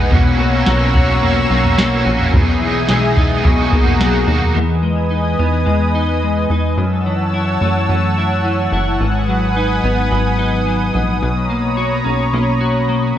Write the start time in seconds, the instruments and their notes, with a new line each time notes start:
Already playing: analog synth bass A#1, clean electric guitar G#3 D#4 F#4, overdriven electric guitar B3 D#4 G#4, analog synth pad F#5
0.11 analog synth bass B1, clean electric guitar B2, overdriven electric guitar B2 E3 A#3 C#4 F#4, analog synth pad C#5 A#5 E6, kick, floor tom
0.39 clean electric guitar A#3, overdriven electric guitar A#3 C#4 F#4
0.66 analog synth bass B1, overdriven electric guitar B2 E3 A#3 C#4 F#4, clean electric guitar C#4, snare
0.94 overdriven electric guitar C#4 F#4, clean electric guitar F#4, kick, floor tom
0.98 overdriven electric guitar A#3
1.22 overdriven electric guitar E3 A#3 C#4, clean electric guitar A#3, floor tom
1.26 overdriven electric guitar F#4
1.49 analog synth bass B1, overdriven electric guitar A#3 C#4 F#4, clean electric guitar C#4
1.65 floor tom
1.77 overdriven electric guitar B2 E3 A#3 C#4 F#4, clean electric guitar A#3, snare
2.04 analog synth bass A#1, clean electric guitar C#4, overdriven electric guitar C#4 F#4
2.09 overdriven electric guitar A#3
2.21 floor tom
2.32 analog synth bass B1, clean electric guitar B2, overdriven electric guitar B2 E3 B3, analog synth pad E5 G#5 D#6, kick, floor tom
2.36 overdriven electric guitar D#4 G#4, analog synth pad G#4
2.61 clean electric guitar E3, overdriven electric guitar D#4 G#4
2.65 overdriven electric guitar B3
2.88 analog synth bass B1, overdriven electric guitar B2 E3 B3 D#4 G#4, clean electric guitar G#3, snare
3.16 overdriven electric guitar B3 D#4 G#4, clean electric guitar D#4, kick, floor tom
3.44 analog synth bass B1, clean electric guitar B2, overdriven electric guitar F#3 A#3 D#4, analog synth pad F#5 A#5, kick, floor tom
3.48 overdriven electric guitar F#4
3.71 analog synth bass B1, clean electric guitar A#3, overdriven electric guitar D#4 F#4, kick
3.75 overdriven electric guitar A#3
3.87 floor tom
3.99 overdriven electric guitar B2 F#3 A#3 D#4 F#4, clean electric guitar F#3, snare
4.27 analog synth bass D#2, clean electric guitar A#3, overdriven electric guitar A#3 D#4 F#4
4.42 floor tom
4.54 analog synth bass E2, clean electric guitar E3, analog synth pad B4 D#5 G#5 D#6
4.83 clean electric guitar G#3
5.11 clean electric guitar D#4
5.39 analog synth bass E2, clean electric guitar B3
5.66 analog synth bass E2, clean electric guitar G#3
5.95 clean electric guitar D#4
6.23 clean electric guitar G#3
6.50 analog synth bass E2, clean electric guitar D#4
6.77 analog synth bass F#2, clean electric guitar F#2, analog synth pad C#5 F#5 A5 E6
7.06 clean electric guitar E3
7.34 clean electric guitar E4
7.61 analog synth bass F#2, clean electric guitar A3
7.89 analog synth bass F#2, clean electric guitar E3
8.18 clean electric guitar E4
8.45 clean electric guitar E3
8.72 analog synth bass F#1, clean electric guitar E4
9.00 analog synth bass G#1, clean electric guitar G#2, analog synth pad B4 G#5 D#6
9.28 clean electric guitar F#3
9.56 clean electric guitar D#4
9.84 analog synth bass G#1, clean electric guitar B3
10.12 analog synth bass G#1, clean electric guitar F#3
10.39 clean electric guitar D#4
10.66 clean electric guitar F#3
10.94 analog synth bass A#1, clean electric guitar D#4
11.22 analog synth bass B1, clean electric guitar B2, analog synth pad C#5 A#5 B5
11.50 clean electric guitar A#3
11.77 clean electric guitar F#4
12.04 analog synth bass B1, clean electric guitar C#4
12.33 analog synth bass B1, clean electric guitar A#3
12.61 clean electric guitar F#4
12.89 clean electric guitar A#3